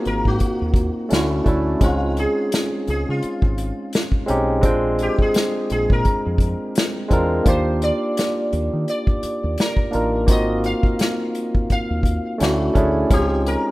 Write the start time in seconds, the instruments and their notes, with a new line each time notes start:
Already playing: tine electric piano A#3 C4 D#4 F4 F#4
0.05 fingered electric bass G#1, sitar A#4, closed hi-hat
0.25 fingered electric bass G#2, sitar F#4, kick
0.40 kick, closed hi-hat
0.62 fingered electric bass D#2
0.74 kick, closed hi-hat
1.09 fingered electric bass D2, tine electric piano A3 C#4 D4 E4, closed hi-hat
1.13 sitar E4, tine electric piano F#4, snare
1.44 fingered electric bass D2, tine electric piano A3 C#4 D4 E4, kick, closed hi-hat
1.49 tine electric piano A4
1.79 fingered electric bass C#2, tine electric piano G#3 C4 C#4 D#4, kick, closed hi-hat
1.83 tine electric piano F4, sitar F4
2.17 sitar G#4, closed hi-hat
2.52 snare, closed hi-hat
2.88 fingered electric bass C#2, sitar G#4, closed hi-hat
3.09 fingered electric bass C#3, sitar F4
3.23 muted fingered electric bass stroke, closed hi-hat
3.42 fingered electric bass G#1, kick
3.58 closed hi-hat
3.93 snare, closed hi-hat
4.12 kick
4.26 fingered electric bass B1, tine electric piano G#3 C4 C#4 D#4, closed hi-hat
4.30 tine electric piano G4
4.61 fingered electric bass A#1, tine electric piano G#3 C4 D4 F4, kick, closed hi-hat
4.65 tine electric piano G5
4.99 sitar G4, closed hi-hat
5.19 sitar G#4, kick
5.34 snare, closed hi-hat
5.70 fingered electric bass A#1, sitar G#4, closed hi-hat
5.90 fingered electric bass A#2, sitar A#4, kick
6.05 kick, closed hi-hat
6.26 fingered electric bass F2
6.38 kick, closed hi-hat
6.75 snare, closed hi-hat
7.09 fingered electric bass E2, tine electric piano G#3 C4 D4 F4, kick, closed hi-hat
7.13 tine electric piano A#4
7.44 fingered electric bass D#2, tine electric piano A#3 D4 D#4 F4, kick, closed hi-hat
7.48 tine electric piano G4, sitar C5
7.82 sitar D5, closed hi-hat
8.17 snare, closed hi-hat
8.53 fingered electric bass D#2, closed hi-hat
8.73 fingered electric bass D#3
8.88 sitar D5, closed hi-hat
9.07 kick
9.23 muted fingered electric bass stroke, closed hi-hat
9.44 fingered electric bass D#2
9.58 sitar A#4, snare, closed hi-hat
9.77 kick
9.91 fingered electric bass A1, tine electric piano A#3 D4 D#4 F4, closed hi-hat
9.95 tine electric piano A#4
10.27 fingered electric bass G#1, tine electric piano A#3 C4 D#4 F4, kick, closed hi-hat
10.31 tine electric piano F#4, sitar D#5
10.64 sitar F5, closed hi-hat
10.83 kick
10.99 snare, closed hi-hat
11.35 closed hi-hat
11.55 kick
11.70 sitar F5, muted fingered electric bass stroke, kick, closed hi-hat
11.91 fingered electric bass D#2
12.03 kick, closed hi-hat
12.38 fingered electric bass D2, tine electric piano A3 C#4 D4 E4, closed hi-hat
12.42 sitar F#4, tine electric piano F#4, snare
12.74 fingered electric bass D2, tine electric piano A3 C#4 D4 E4, kick, closed hi-hat
12.78 tine electric piano G#4
13.09 fingered electric bass C#2, tine electric piano G#3 C4 C#4 D#4, kick, closed hi-hat
13.13 tine electric piano F4, sitar G4
13.46 sitar A#4, closed hi-hat